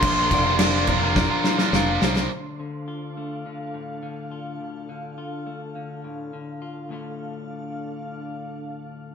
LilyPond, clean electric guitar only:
\new Staff \with { instrumentName = "Clean electric guitar" } { \time 4/4 \key d \minor \tempo 4 = 104 <bes, bes d' f'>8 f8 d'8 bes8 f'8 bes8 d'8 bes8 | d,8 d8 f'8 a8 d8 a,8 d8 f'8 | d,8 d8 f'8 a8 d8 a,8 d8 f'8 | <d, a, d a f'>1 | }